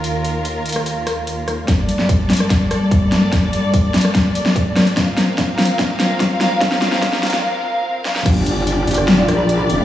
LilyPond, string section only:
\new Staff \with { instrumentName = "String section" } { \time 4/4 \key g \minor \tempo 4 = 146 <ees, ees bes f' bes'>1 | <g, g bes a' d''>1~ | <g, g bes a' d''>1 | <bes, f c' bes' f''>1~ |
<bes, f c' bes' f''>1 | <d' g' d''>1 | }